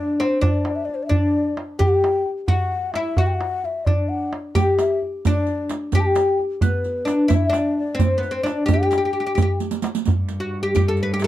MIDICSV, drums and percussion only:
0, 0, Header, 1, 3, 480
1, 0, Start_track
1, 0, Tempo, 458716
1, 453, Time_signature, 6, 3, 24, 8
1, 11795, End_track
2, 0, Start_track
2, 0, Title_t, "Riq"
2, 4773, Note_on_c, 9, 54, 70
2, 4877, Note_off_c, 9, 54, 0
2, 5013, Note_on_c, 9, 54, 47
2, 5117, Note_off_c, 9, 54, 0
2, 5494, Note_on_c, 9, 54, 58
2, 5598, Note_off_c, 9, 54, 0
2, 5720, Note_on_c, 9, 54, 19
2, 5825, Note_off_c, 9, 54, 0
2, 5958, Note_on_c, 9, 54, 52
2, 6063, Note_off_c, 9, 54, 0
2, 6196, Note_on_c, 9, 54, 54
2, 6300, Note_off_c, 9, 54, 0
2, 6440, Note_on_c, 9, 54, 50
2, 6544, Note_off_c, 9, 54, 0
2, 6926, Note_on_c, 9, 54, 60
2, 7031, Note_off_c, 9, 54, 0
2, 7160, Note_on_c, 9, 54, 18
2, 7265, Note_off_c, 9, 54, 0
2, 7402, Note_on_c, 9, 54, 47
2, 7506, Note_off_c, 9, 54, 0
2, 7636, Note_on_c, 9, 54, 66
2, 7741, Note_off_c, 9, 54, 0
2, 7886, Note_on_c, 9, 54, 47
2, 7990, Note_off_c, 9, 54, 0
2, 8368, Note_on_c, 9, 54, 72
2, 8473, Note_off_c, 9, 54, 0
2, 8610, Note_on_c, 9, 54, 18
2, 8715, Note_off_c, 9, 54, 0
2, 8856, Note_on_c, 9, 54, 39
2, 8960, Note_off_c, 9, 54, 0
2, 9087, Note_on_c, 9, 54, 71
2, 9192, Note_off_c, 9, 54, 0
2, 9328, Note_on_c, 9, 54, 45
2, 9432, Note_off_c, 9, 54, 0
2, 9811, Note_on_c, 9, 54, 66
2, 9915, Note_off_c, 9, 54, 0
2, 10048, Note_on_c, 9, 54, 50
2, 10153, Note_off_c, 9, 54, 0
2, 10161, Note_on_c, 9, 54, 65
2, 10266, Note_off_c, 9, 54, 0
2, 10279, Note_on_c, 9, 54, 71
2, 10384, Note_off_c, 9, 54, 0
2, 10410, Note_on_c, 9, 54, 75
2, 10515, Note_off_c, 9, 54, 0
2, 10522, Note_on_c, 9, 54, 60
2, 10626, Note_off_c, 9, 54, 0
2, 10763, Note_on_c, 9, 54, 46
2, 10867, Note_off_c, 9, 54, 0
2, 11246, Note_on_c, 9, 54, 56
2, 11350, Note_off_c, 9, 54, 0
2, 11477, Note_on_c, 9, 54, 19
2, 11582, Note_off_c, 9, 54, 0
2, 11714, Note_on_c, 9, 54, 48
2, 11795, Note_off_c, 9, 54, 0
2, 11795, End_track
3, 0, Start_track
3, 0, Title_t, "Tombak"
3, 214, Note_on_c, 9, 63, 61
3, 318, Note_off_c, 9, 63, 0
3, 445, Note_on_c, 9, 64, 102
3, 549, Note_off_c, 9, 64, 0
3, 680, Note_on_c, 9, 63, 68
3, 784, Note_off_c, 9, 63, 0
3, 932, Note_on_c, 9, 62, 29
3, 1036, Note_off_c, 9, 62, 0
3, 1163, Note_on_c, 9, 64, 80
3, 1268, Note_off_c, 9, 64, 0
3, 1404, Note_on_c, 9, 62, 27
3, 1508, Note_off_c, 9, 62, 0
3, 1645, Note_on_c, 9, 63, 67
3, 1750, Note_off_c, 9, 63, 0
3, 1886, Note_on_c, 9, 64, 90
3, 1991, Note_off_c, 9, 64, 0
3, 2134, Note_on_c, 9, 63, 75
3, 2239, Note_off_c, 9, 63, 0
3, 2361, Note_on_c, 9, 62, 25
3, 2466, Note_off_c, 9, 62, 0
3, 2594, Note_on_c, 9, 64, 82
3, 2698, Note_off_c, 9, 64, 0
3, 2835, Note_on_c, 9, 62, 25
3, 2940, Note_off_c, 9, 62, 0
3, 3074, Note_on_c, 9, 63, 65
3, 3179, Note_off_c, 9, 63, 0
3, 3314, Note_on_c, 9, 64, 93
3, 3419, Note_off_c, 9, 64, 0
3, 3564, Note_on_c, 9, 63, 65
3, 3668, Note_off_c, 9, 63, 0
3, 3808, Note_on_c, 9, 62, 25
3, 3912, Note_off_c, 9, 62, 0
3, 4044, Note_on_c, 9, 64, 85
3, 4149, Note_off_c, 9, 64, 0
3, 4289, Note_on_c, 9, 62, 26
3, 4394, Note_off_c, 9, 62, 0
3, 4527, Note_on_c, 9, 63, 66
3, 4632, Note_off_c, 9, 63, 0
3, 4762, Note_on_c, 9, 64, 87
3, 4866, Note_off_c, 9, 64, 0
3, 5008, Note_on_c, 9, 63, 73
3, 5113, Note_off_c, 9, 63, 0
3, 5254, Note_on_c, 9, 62, 26
3, 5359, Note_off_c, 9, 62, 0
3, 5499, Note_on_c, 9, 64, 86
3, 5603, Note_off_c, 9, 64, 0
3, 5740, Note_on_c, 9, 62, 25
3, 5845, Note_off_c, 9, 62, 0
3, 5971, Note_on_c, 9, 63, 68
3, 6076, Note_off_c, 9, 63, 0
3, 6205, Note_on_c, 9, 64, 91
3, 6310, Note_off_c, 9, 64, 0
3, 6446, Note_on_c, 9, 63, 74
3, 6551, Note_off_c, 9, 63, 0
3, 6689, Note_on_c, 9, 62, 25
3, 6794, Note_off_c, 9, 62, 0
3, 6919, Note_on_c, 9, 64, 81
3, 7024, Note_off_c, 9, 64, 0
3, 7171, Note_on_c, 9, 62, 26
3, 7276, Note_off_c, 9, 62, 0
3, 7404, Note_on_c, 9, 63, 64
3, 7509, Note_off_c, 9, 63, 0
3, 7644, Note_on_c, 9, 64, 96
3, 7748, Note_off_c, 9, 64, 0
3, 7879, Note_on_c, 9, 63, 73
3, 7984, Note_off_c, 9, 63, 0
3, 8132, Note_on_c, 9, 62, 25
3, 8237, Note_off_c, 9, 62, 0
3, 8364, Note_on_c, 9, 64, 86
3, 8468, Note_off_c, 9, 64, 0
3, 8612, Note_on_c, 9, 62, 28
3, 8717, Note_off_c, 9, 62, 0
3, 8855, Note_on_c, 9, 63, 65
3, 8959, Note_off_c, 9, 63, 0
3, 9089, Note_on_c, 9, 64, 95
3, 9193, Note_off_c, 9, 64, 0
3, 9343, Note_on_c, 9, 63, 70
3, 9448, Note_off_c, 9, 63, 0
3, 9815, Note_on_c, 9, 64, 92
3, 9919, Note_off_c, 9, 64, 0
3, 10062, Note_on_c, 9, 62, 25
3, 10167, Note_off_c, 9, 62, 0
3, 10298, Note_on_c, 9, 63, 71
3, 10402, Note_off_c, 9, 63, 0
3, 10544, Note_on_c, 9, 64, 90
3, 10649, Note_off_c, 9, 64, 0
3, 11023, Note_on_c, 9, 62, 29
3, 11128, Note_off_c, 9, 62, 0
3, 11264, Note_on_c, 9, 64, 86
3, 11368, Note_off_c, 9, 64, 0
3, 11506, Note_on_c, 9, 62, 27
3, 11610, Note_off_c, 9, 62, 0
3, 11743, Note_on_c, 9, 63, 68
3, 11795, Note_off_c, 9, 63, 0
3, 11795, End_track
0, 0, End_of_file